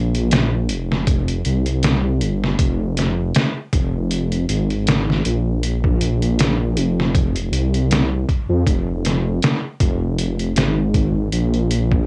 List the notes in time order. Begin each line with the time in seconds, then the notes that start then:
Already playing: A#1
0.15 closed hi-hat
0.31 snare, closed hi-hat
0.69 F1, closed hi-hat
0.92 snare
1.07 kick, closed hi-hat
1.28 closed hi-hat
1.45 C2, closed hi-hat
1.66 closed hi-hat
1.83 snare, closed hi-hat
2.21 G1, closed hi-hat
2.44 snare
2.59 F1, kick, closed hi-hat
2.97 snare, closed hi-hat
3.35 snare, closed hi-hat
3.73 F1, kick, closed hi-hat
4.11 closed hi-hat
4.32 closed hi-hat
4.49 G#1, closed hi-hat
4.70 closed hi-hat
4.87 snare, closed hi-hat
5.10 snare
5.25 A#1, closed hi-hat
5.63 closed hi-hat
5.84 kick
6.01 closed hi-hat
6.22 closed hi-hat
6.39 snare, closed hi-hat
6.77 F1, closed hi-hat
7.00 snare
7.15 kick, closed hi-hat
7.36 closed hi-hat
7.52 C2, closed hi-hat
7.74 closed hi-hat
7.91 snare, closed hi-hat
8.29 kick, closed hi-hat
8.49 F2
8.67 F1, kick, closed hi-hat
9.05 snare, closed hi-hat
9.42 snare, closed hi-hat
9.80 F1, kick, closed hi-hat
10.19 closed hi-hat
10.39 closed hi-hat
10.56 G#1, snare, closed hi-hat
10.94 kick, closed hi-hat
11.32 A#1, closed hi-hat
11.54 closed hi-hat
11.71 closed hi-hat
11.91 kick